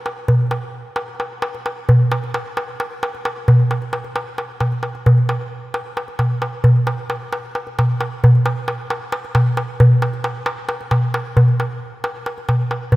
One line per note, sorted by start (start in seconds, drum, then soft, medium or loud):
0.06 darbuka tek medium
0.28 darbuka dum medium
0.51 darbuka tek medium
0.96 darbuka tek medium
1.20 darbuka tek medium
1.42 darbuka tek medium
1.55 darbuka tek soft
1.66 darbuka tek medium
1.89 darbuka dum medium
2.12 darbuka tek medium
2.24 darbuka tek soft
2.34 darbuka tek medium
2.57 darbuka tek medium
2.80 darbuka tek medium
3.03 darbuka tek medium
3.15 darbuka tek soft
3.25 darbuka tek medium
3.48 darbuka dum loud
3.60 darbuka tek soft
3.71 darbuka tek medium
3.82 darbuka tek soft
3.93 darbuka tek medium
4.04 darbuka tek soft
4.16 darbuka tek medium
4.38 darbuka tek medium
4.60 darbuka tek medium
4.60 darbuka dum medium
4.72 darbuka tek soft
4.83 darbuka tek medium
4.95 darbuka tek soft
5.06 darbuka dum medium
5.18 darbuka tek soft
5.29 darbuka tek medium
5.74 darbuka tek medium
5.97 darbuka tek medium
6.08 darbuka tek soft
6.19 darbuka tek medium
6.19 darbuka dum medium
6.42 darbuka tek medium
6.64 darbuka dum medium
6.76 darbuka tek soft
6.87 darbuka tek medium
7.10 darbuka tek medium
7.33 darbuka tek medium
7.55 darbuka tek medium
7.67 darbuka tek soft
7.79 darbuka tek medium
7.79 darbuka dum medium
8.01 darbuka tek medium
8.24 darbuka dum loud
8.35 darbuka tek soft
8.46 darbuka tek medium
8.68 darbuka tek medium
8.90 darbuka tek medium
9.12 darbuka tek medium
9.25 darbuka tek soft
9.35 darbuka tek medium
9.35 darbuka dum medium
9.57 darbuka tek medium
9.80 darbuka dum loud
10.02 darbuka tek medium
10.14 darbuka tek soft
10.24 darbuka tek medium
10.46 darbuka tek medium
10.69 darbuka tek medium
10.81 darbuka tek soft
10.91 darbuka tek medium
10.91 darbuka dum medium
11.14 darbuka tek medium
11.37 darbuka dum medium
11.48 darbuka tek soft
11.60 darbuka tek medium
12.04 darbuka tek medium
12.26 darbuka tek medium
12.38 darbuka tek soft
12.49 darbuka tek medium
12.49 darbuka dum medium
12.71 darbuka tek medium
12.92 darbuka dum medium